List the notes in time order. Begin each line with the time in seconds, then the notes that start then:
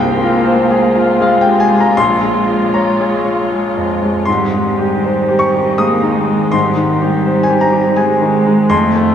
Already playing: C2 G#3 A#3 F4 C5 G5
0.22 F4
0.47 C5
0.71 G#4
0.96 F4
1.21 G#3 F5
1.41 G5
1.46 C3
1.60 G#5
1.70 G#3
1.80 A#5
1.97 A#1 G#3 C#5 C6
2.22 G#3
2.48 F4
2.74 C#5 A#5
3.01 G#4
3.25 F4
3.52 G#3
3.77 F2
4.03 G#3
4.25 G#2 D#3 G3 C4 D#4 C6
4.53 G#3
4.65 G3
4.79 G4
5.04 C5
5.29 G4
5.39 C#6
5.54 G4
5.78 G#3 A#3 D#6
6.03 D#3
6.16 G#3
6.28 G#3
6.52 G#2 G3 C6
6.77 D#3
6.91 G3
7.02 G4
7.26 C5
7.43 G#5
7.50 G4
7.61 A#5
7.72 G4
7.96 G#3 G#5
8.22 D#3
8.46 G#3
8.70 F2 G3 A3 F4 A4 C6
8.95 A3